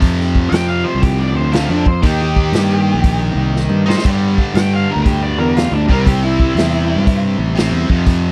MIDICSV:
0, 0, Header, 1, 5, 480
1, 0, Start_track
1, 0, Tempo, 503356
1, 13, Time_signature, 4, 2, 24, 8
1, 7933, End_track
2, 0, Start_track
2, 0, Title_t, "Lead electric guitar"
2, 0, Program_c, 0, 29
2, 472, Note_on_c, 0, 79, 101
2, 639, Note_off_c, 0, 79, 0
2, 651, Note_on_c, 0, 77, 84
2, 803, Note_on_c, 0, 72, 80
2, 809, Note_off_c, 0, 77, 0
2, 965, Note_off_c, 0, 72, 0
2, 974, Note_on_c, 0, 67, 81
2, 1130, Note_off_c, 0, 67, 0
2, 1136, Note_on_c, 0, 74, 77
2, 1291, Note_off_c, 0, 74, 0
2, 1302, Note_on_c, 0, 72, 79
2, 1450, Note_on_c, 0, 65, 87
2, 1455, Note_off_c, 0, 72, 0
2, 1609, Note_off_c, 0, 65, 0
2, 1626, Note_on_c, 0, 62, 75
2, 1777, Note_off_c, 0, 62, 0
2, 1783, Note_on_c, 0, 72, 84
2, 1935, Note_off_c, 0, 72, 0
2, 1936, Note_on_c, 0, 67, 86
2, 2092, Note_off_c, 0, 67, 0
2, 2119, Note_on_c, 0, 67, 89
2, 3040, Note_off_c, 0, 67, 0
2, 3706, Note_on_c, 0, 72, 83
2, 3857, Note_off_c, 0, 72, 0
2, 4345, Note_on_c, 0, 79, 86
2, 4497, Note_off_c, 0, 79, 0
2, 4525, Note_on_c, 0, 77, 71
2, 4667, Note_off_c, 0, 77, 0
2, 4682, Note_on_c, 0, 70, 73
2, 4826, Note_off_c, 0, 70, 0
2, 4832, Note_on_c, 0, 67, 76
2, 4980, Note_off_c, 0, 67, 0
2, 4983, Note_on_c, 0, 74, 76
2, 5136, Note_off_c, 0, 74, 0
2, 5136, Note_on_c, 0, 70, 79
2, 5292, Note_off_c, 0, 70, 0
2, 5309, Note_on_c, 0, 65, 80
2, 5470, Note_off_c, 0, 65, 0
2, 5470, Note_on_c, 0, 62, 75
2, 5619, Note_off_c, 0, 62, 0
2, 5633, Note_on_c, 0, 70, 80
2, 5780, Note_off_c, 0, 70, 0
2, 5798, Note_on_c, 0, 67, 81
2, 5936, Note_on_c, 0, 64, 91
2, 5943, Note_off_c, 0, 67, 0
2, 6866, Note_off_c, 0, 64, 0
2, 7933, End_track
3, 0, Start_track
3, 0, Title_t, "Distorted electric guitar"
3, 0, Program_c, 1, 30
3, 0, Note_on_c, 1, 41, 74
3, 0, Note_on_c, 1, 48, 80
3, 0, Note_on_c, 1, 53, 85
3, 1434, Note_off_c, 1, 41, 0
3, 1446, Note_on_c, 1, 41, 75
3, 1457, Note_off_c, 1, 48, 0
3, 1465, Note_off_c, 1, 53, 0
3, 1470, Note_on_c, 1, 48, 74
3, 1482, Note_on_c, 1, 53, 75
3, 1748, Note_off_c, 1, 41, 0
3, 1760, Note_off_c, 1, 48, 0
3, 1766, Note_off_c, 1, 53, 0
3, 1930, Note_on_c, 1, 51, 74
3, 1951, Note_on_c, 1, 58, 82
3, 1962, Note_on_c, 1, 63, 88
3, 3667, Note_off_c, 1, 63, 0
3, 3671, Note_off_c, 1, 51, 0
3, 3678, Note_on_c, 1, 63, 68
3, 3682, Note_off_c, 1, 58, 0
3, 3700, Note_on_c, 1, 58, 69
3, 3710, Note_on_c, 1, 51, 58
3, 3841, Note_off_c, 1, 63, 0
3, 3849, Note_on_c, 1, 43, 70
3, 3851, Note_off_c, 1, 58, 0
3, 3856, Note_off_c, 1, 51, 0
3, 3867, Note_on_c, 1, 50, 80
3, 3885, Note_on_c, 1, 55, 80
3, 5589, Note_off_c, 1, 43, 0
3, 5598, Note_off_c, 1, 50, 0
3, 5606, Note_on_c, 1, 48, 73
3, 5607, Note_off_c, 1, 55, 0
3, 5623, Note_on_c, 1, 55, 78
3, 5633, Note_on_c, 1, 60, 91
3, 7187, Note_off_c, 1, 48, 0
3, 7198, Note_on_c, 1, 48, 66
3, 7204, Note_off_c, 1, 55, 0
3, 7214, Note_off_c, 1, 60, 0
3, 7215, Note_on_c, 1, 55, 78
3, 7231, Note_on_c, 1, 60, 79
3, 7502, Note_off_c, 1, 48, 0
3, 7510, Note_off_c, 1, 55, 0
3, 7518, Note_off_c, 1, 60, 0
3, 7521, Note_on_c, 1, 41, 86
3, 7539, Note_on_c, 1, 48, 84
3, 7550, Note_on_c, 1, 53, 80
3, 7933, Note_off_c, 1, 41, 0
3, 7933, Note_off_c, 1, 48, 0
3, 7933, Note_off_c, 1, 53, 0
3, 7933, End_track
4, 0, Start_track
4, 0, Title_t, "Fingered electric bass"
4, 0, Program_c, 2, 33
4, 0, Note_on_c, 2, 41, 85
4, 459, Note_off_c, 2, 41, 0
4, 495, Note_on_c, 2, 41, 89
4, 789, Note_off_c, 2, 41, 0
4, 902, Note_on_c, 2, 36, 79
4, 1284, Note_off_c, 2, 36, 0
4, 1284, Note_on_c, 2, 38, 83
4, 1588, Note_off_c, 2, 38, 0
4, 1612, Note_on_c, 2, 41, 91
4, 1936, Note_off_c, 2, 41, 0
4, 1936, Note_on_c, 2, 39, 87
4, 2384, Note_off_c, 2, 39, 0
4, 2406, Note_on_c, 2, 43, 82
4, 2782, Note_off_c, 2, 43, 0
4, 2803, Note_on_c, 2, 34, 78
4, 3179, Note_off_c, 2, 34, 0
4, 3196, Note_on_c, 2, 36, 81
4, 3504, Note_off_c, 2, 36, 0
4, 3526, Note_on_c, 2, 43, 81
4, 3754, Note_off_c, 2, 43, 0
4, 3863, Note_on_c, 2, 43, 85
4, 4154, Note_off_c, 2, 43, 0
4, 4330, Note_on_c, 2, 43, 88
4, 4627, Note_off_c, 2, 43, 0
4, 4726, Note_on_c, 2, 38, 79
4, 5130, Note_off_c, 2, 38, 0
4, 5130, Note_on_c, 2, 40, 83
4, 5431, Note_off_c, 2, 40, 0
4, 5452, Note_on_c, 2, 38, 92
4, 5600, Note_off_c, 2, 38, 0
4, 5617, Note_on_c, 2, 36, 85
4, 6220, Note_off_c, 2, 36, 0
4, 6246, Note_on_c, 2, 40, 82
4, 6620, Note_off_c, 2, 40, 0
4, 6638, Note_on_c, 2, 43, 76
4, 7015, Note_off_c, 2, 43, 0
4, 7044, Note_on_c, 2, 33, 80
4, 7346, Note_off_c, 2, 33, 0
4, 7365, Note_on_c, 2, 40, 84
4, 7514, Note_off_c, 2, 40, 0
4, 7530, Note_on_c, 2, 41, 90
4, 7933, Note_off_c, 2, 41, 0
4, 7933, End_track
5, 0, Start_track
5, 0, Title_t, "Drums"
5, 15, Note_on_c, 9, 46, 43
5, 21, Note_on_c, 9, 36, 99
5, 110, Note_off_c, 9, 46, 0
5, 116, Note_off_c, 9, 36, 0
5, 194, Note_on_c, 9, 38, 29
5, 290, Note_off_c, 9, 38, 0
5, 336, Note_on_c, 9, 36, 68
5, 431, Note_off_c, 9, 36, 0
5, 497, Note_on_c, 9, 46, 48
5, 513, Note_on_c, 9, 38, 101
5, 593, Note_off_c, 9, 46, 0
5, 608, Note_off_c, 9, 38, 0
5, 978, Note_on_c, 9, 46, 50
5, 982, Note_on_c, 9, 36, 102
5, 1073, Note_off_c, 9, 46, 0
5, 1078, Note_off_c, 9, 36, 0
5, 1459, Note_on_c, 9, 46, 46
5, 1474, Note_on_c, 9, 38, 95
5, 1554, Note_off_c, 9, 46, 0
5, 1569, Note_off_c, 9, 38, 0
5, 1775, Note_on_c, 9, 36, 76
5, 1870, Note_off_c, 9, 36, 0
5, 1937, Note_on_c, 9, 46, 48
5, 1938, Note_on_c, 9, 36, 95
5, 2032, Note_off_c, 9, 46, 0
5, 2034, Note_off_c, 9, 36, 0
5, 2254, Note_on_c, 9, 36, 72
5, 2349, Note_off_c, 9, 36, 0
5, 2414, Note_on_c, 9, 46, 47
5, 2430, Note_on_c, 9, 38, 105
5, 2510, Note_off_c, 9, 46, 0
5, 2525, Note_off_c, 9, 38, 0
5, 2896, Note_on_c, 9, 46, 48
5, 2899, Note_on_c, 9, 36, 102
5, 2991, Note_off_c, 9, 46, 0
5, 2994, Note_off_c, 9, 36, 0
5, 3395, Note_on_c, 9, 38, 49
5, 3490, Note_off_c, 9, 38, 0
5, 3715, Note_on_c, 9, 38, 74
5, 3795, Note_off_c, 9, 38, 0
5, 3795, Note_on_c, 9, 38, 67
5, 3862, Note_on_c, 9, 36, 94
5, 3867, Note_on_c, 9, 46, 44
5, 3867, Note_on_c, 9, 49, 71
5, 3891, Note_off_c, 9, 38, 0
5, 3958, Note_off_c, 9, 36, 0
5, 3962, Note_off_c, 9, 46, 0
5, 3962, Note_off_c, 9, 49, 0
5, 4176, Note_on_c, 9, 36, 66
5, 4272, Note_off_c, 9, 36, 0
5, 4340, Note_on_c, 9, 46, 47
5, 4355, Note_on_c, 9, 38, 108
5, 4435, Note_off_c, 9, 46, 0
5, 4450, Note_off_c, 9, 38, 0
5, 4822, Note_on_c, 9, 46, 47
5, 4823, Note_on_c, 9, 36, 100
5, 4917, Note_off_c, 9, 46, 0
5, 4918, Note_off_c, 9, 36, 0
5, 5307, Note_on_c, 9, 46, 47
5, 5322, Note_on_c, 9, 38, 92
5, 5402, Note_off_c, 9, 46, 0
5, 5418, Note_off_c, 9, 38, 0
5, 5620, Note_on_c, 9, 36, 77
5, 5715, Note_off_c, 9, 36, 0
5, 5784, Note_on_c, 9, 36, 103
5, 5787, Note_on_c, 9, 46, 50
5, 5880, Note_off_c, 9, 36, 0
5, 5882, Note_off_c, 9, 46, 0
5, 6100, Note_on_c, 9, 36, 72
5, 6195, Note_off_c, 9, 36, 0
5, 6265, Note_on_c, 9, 46, 50
5, 6280, Note_on_c, 9, 38, 107
5, 6360, Note_off_c, 9, 46, 0
5, 6375, Note_off_c, 9, 38, 0
5, 6742, Note_on_c, 9, 36, 107
5, 6742, Note_on_c, 9, 46, 50
5, 6837, Note_off_c, 9, 36, 0
5, 6838, Note_off_c, 9, 46, 0
5, 7219, Note_on_c, 9, 46, 43
5, 7234, Note_on_c, 9, 38, 101
5, 7314, Note_off_c, 9, 46, 0
5, 7330, Note_off_c, 9, 38, 0
5, 7531, Note_on_c, 9, 36, 77
5, 7627, Note_off_c, 9, 36, 0
5, 7689, Note_on_c, 9, 46, 44
5, 7692, Note_on_c, 9, 36, 97
5, 7784, Note_off_c, 9, 46, 0
5, 7787, Note_off_c, 9, 36, 0
5, 7933, End_track
0, 0, End_of_file